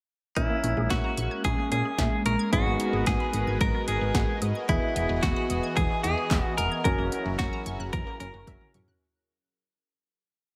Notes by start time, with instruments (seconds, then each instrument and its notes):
0.36 fm bass A#1, synth arpeggio sound E3, analog synth pad G#3 A#3 C#4, grand piano C#4 E4 A#4, clean electric guitar E4, kick, closed hi-hat
0.50 synth arpeggio sound A#3
0.63 fm bass A#1, synth arpeggio sound C#4, closed hi-hat
0.77 fm bass A#1, synth arpeggio sound G#4
0.90 fm bass A#1, clean electric guitar F#4, synth arpeggio sound E5, kick, snare, closed hi-hat
1.04 synth arpeggio sound A#5
1.17 fm bass A#1, synth arpeggio sound C#6, closed hi-hat
1.31 synth arpeggio sound G#6
1.44 fm bass A#1, synth arpeggio sound E3, clean electric guitar G#4, kick, closed hi-hat
1.58 synth arpeggio sound A#3
1.72 fm bass A#2, synth arpeggio sound C#4, clean electric guitar G#4, closed hi-hat
1.85 synth arpeggio sound G#4
1.98 fm bass A#1, synth arpeggio sound E5, kick, snare, closed hi-hat
2.26 fm bass A#1, clean electric guitar A#4, synth arpeggio sound C#6, closed hi-hat
2.39 synth arpeggio sound G#6
2.52 fm bass G#1, synth arpeggio sound F#3, grand piano B3 D#4 G#4, analog synth pad F#4 A#4 B4 D#5, clean electric guitar F#4, kick, closed hi-hat
2.66 fm bass G#1, synth arpeggio sound B3
2.80 synth arpeggio sound D#4, closed hi-hat
2.93 fm bass G#1, synth arpeggio sound G#4
3.06 fm bass G#1, clean electric guitar G#4, synth arpeggio sound F#5, kick, snare, closed hi-hat
3.20 synth arpeggio sound B5
3.33 fm bass G#1, synth arpeggio sound D#6, closed hi-hat
3.47 fm bass G#1, synth arpeggio sound G#6
3.61 fm bass G#1, synth arpeggio sound F#3, clean electric guitar A#4, kick, closed hi-hat
3.74 synth arpeggio sound B3
3.88 fm bass G#1, synth arpeggio sound D#4, clean electric guitar G#4, closed hi-hat
4.01 fm bass G#1, synth arpeggio sound G#4
4.14 fm bass G#1, synth arpeggio sound F#5, kick, snare, closed hi-hat
4.42 fm bass G#2, synth arpeggio sound D#6, closed hi-hat
4.55 synth arpeggio sound G#6
4.69 fm bass E1, synth arpeggio sound E3, analog synth pad E3 B3 G#4, grand piano B3 E4 G#4, clean electric guitar E4, kick, closed hi-hat
4.82 synth arpeggio sound B3
4.96 fm bass E1, synth arpeggio sound D#4, closed hi-hat
5.09 fm bass E1, synth arpeggio sound G#4
5.23 fm bass E1, clean electric guitar F#4, synth arpeggio sound E5, kick, snare, closed hi-hat
5.36 synth arpeggio sound B5
5.50 fm bass E1, synth arpeggio sound D#6, closed hi-hat
5.63 synth arpeggio sound G#6
5.77 fm bass E1, synth arpeggio sound E3, clean electric guitar G#4, kick, closed hi-hat
5.90 synth arpeggio sound B3
6.03 fm bass E2, synth arpeggio sound D#4, clean electric guitar G#4, closed hi-hat
6.18 synth arpeggio sound G#4
6.31 fm bass E1, synth arpeggio sound E5, kick, snare, clap, closed hi-hat
6.58 fm bass E1, clean electric guitar A#4, synth arpeggio sound D#6, closed hi-hat
6.72 synth arpeggio sound G#6
6.84 fm bass F#1, synth arpeggio sound E3, analog synth pad F#3 C#4 E4 A#4, grand piano C#4 F#4 A#4, clean electric guitar A#4, kick, closed hi-hat
6.98 fm bass F#1, synth arpeggio sound A#3
7.12 synth arpeggio sound C#4, closed hi-hat
7.26 fm bass F#1, synth arpeggio sound F#4
7.39 fm bass F#1, clean electric guitar F#4, synth arpeggio sound E5, kick, snare, closed hi-hat
7.53 synth arpeggio sound A#5
7.66 fm bass F#1, synth arpeggio sound C#6, closed hi-hat
7.80 fm bass F#1, synth arpeggio sound F#6
7.93 fm bass F#1, synth arpeggio sound E3, clean electric guitar A#4, kick, closed hi-hat
8.07 synth arpeggio sound A#3
8.20 fm bass F#1, synth arpeggio sound C#4, clean electric guitar A#4, closed hi-hat
8.34 fm bass F#1, synth arpeggio sound F#4
8.47 fm bass F#1, grand piano C#4 F#4 A#4, synth arpeggio sound E5, kick, closed hi-hat, high tom
8.61 mid tom
8.74 fm bass F#2, synth arpeggio sound C#6, closed hi-hat, mid tom
8.88 synth arpeggio sound F#6, floor tom